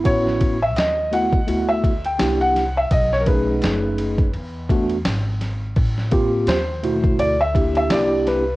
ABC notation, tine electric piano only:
X:1
M:4/4
L:1/8
Q:"Swing 16ths" 1/4=84
K:Emix
V:1 name="Tine electric piano"
[B,CEF] z2 [A,B,EF] [A,B,EF] z [_B,DE=G] z | z [A,C^DG]3 z [A,B,=DF] z2 | z [_B,=C=F=G] z [=B,,A,E^F] z [_B,DEG] [B,DEG] z |]